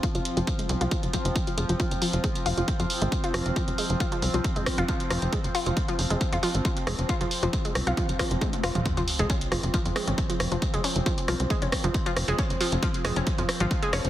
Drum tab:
HH |xxxxxxxxxxxxxxxx|xxoxxxoxxxoxxxox|xxoxxxoxxxoxxxox|xxoxxxoxxxoxxxox|
SD |----------------|--------------r-|----------r---r-|--------------r-|
T1 |----------------|----------------|----------------|----------------|
T2 |----------------|----------------|----------------|----------------|
BD |o---o---o-o-o---|o---o---o---o---|o---o---o-o-o---|o---o---o---o---|

HH |xxoxxxoxxxoxxxox|xxoxxxoxxxoxxxox|xxoxxxoxxxoxxxox|xxoxxxoxxxoxxxox|
SD |------r---r---r-|------r---r---r-|------r---r---r-|------r---r---r-|
T1 |------------oo--|----------------|----------------|----------------|
T2 |---------------o|----------------|----------------|----------------|
BD |o---o---o-o-o---|o---o---o---o---|o---o---o-o-o---|o---o---o---o---|